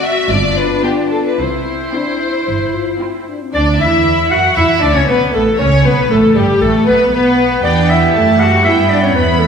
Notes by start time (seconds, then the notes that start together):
Already playing: C4 F#4 A5
0.04 E5
0.30 G1 B3 D4 F4 D5
0.57 B4
0.83 B3 F4 G4 G5
1.10 A4
1.26 B4
1.38 C2 C4 E4 C5
1.92 C4 D4 E4 G5
2.20 E4
2.47 G1
2.73 F4
3.00 C4 E4 G5
3.28 D4
3.42 C4
3.53 D2 D4 D5
3.79 E2 E4 E5
4.30 F#2 F#4 F#5
4.56 E2 E4 E5
4.81 D2 D4 D5
4.94 C#2 C#4 C#5
5.07 B1 B3 B4
5.33 A1 A3 A4
5.58 C#2 C#4 C#5
5.84 B1 B3 B4
6.10 A1 A3 A4
6.35 G1 G3 G4
6.61 A1 A3 A4
6.86 B1 B3 B4
7.12 B1 B3 B4
7.63 E2 B3 D4 G4 D5 G5
7.89 E4 E5
8.14 F#2 A3 A5
8.39 G3 F#4 F#5
8.64 G2 B3 E4 E5 G5
8.89 D4 D5
9.03 C#4 C#5
9.15 E2 B3 E4 B4 B5
9.39 A3 A4